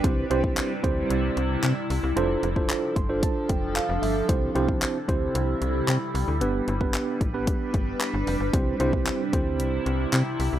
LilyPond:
<<
  \new Staff \with { instrumentName = "Tine electric piano" } { \time 4/4 \key c \major \tempo 4 = 113 << { r1 | r4. c'''8 a''8 g''8 f''8 e''8 | r1 | r1 |
r1 | } \\ { <c' e' g' c''>8 <c' e' g' c''>8. r16 <c' e' g' c''>4. r4 | <d' f' a' c''>8 r16 <d' f' a' c''>8. r16 <d' f' a' c''>4. r8. | <c' e' g' c''>8 <c' e' g' c''>8. r16 <c' e' g' c''>4. r4 | <b d' g' b'>8 r16 <b d' g' b'>8. r16 <b d' g' b'>4. r8. |
<c' e' g' c''>8 <c' e' g' c''>8. r16 <c' e' g' c''>4. r4 | } >> }
  \new Staff \with { instrumentName = "Ambient pad" } { \time 4/4 \key c \major <c g e'>1 | <f d' a'>1 | <c g e'>1 | <d' b'>1 |
<c e'>1 | }
  \new Staff \with { instrumentName = "FM bass" } { \clef bass \time 4/4 \key c \major c,8 c,8. r16 d,8 c,8 c,8 c16 r16 c,16 c,16 | f,,8 f,,8. r16 g,,8. r16 f,,8. f,,16 g,,8 | c,8 c,8. r16 d,8 c,8 c,8 c16 r16 c,16 d,16 | g,,8 g,,8. r16 a,,8. r16 g,,8 r16 g,,16 f,,16 g,,16 |
c,8 c,8. r16 d,8 c,8 c,8 c16 r16 c,16 c,16 | }
  \new DrumStaff \with { instrumentName = "Drums" } \drummode { \time 4/4 <hh bd>8 hh16 bd16 <hc hh>8 <hh bd>8 hh8 hh8 <hc hh>8 hho8 | hh8 hh16 bd16 <hc hh>8 <hh bd>8 <hh bd>8 <hh bd>8 <hc hh>8 hho8 | <hh bd>8 hh16 bd16 <hc hh>8 <hh bd>8 hh8 hh8 <hc hh>8 hho8 | hh8 hh16 bd16 <hc hh>8 <hh bd>8 <hh bd>8 <hh bd>8 <hc hh>8 hho8 |
<hh bd>8 hh16 bd16 <hc hh>8 <hh bd>8 hh8 hh8 <hc hh>8 hho8 | }
>>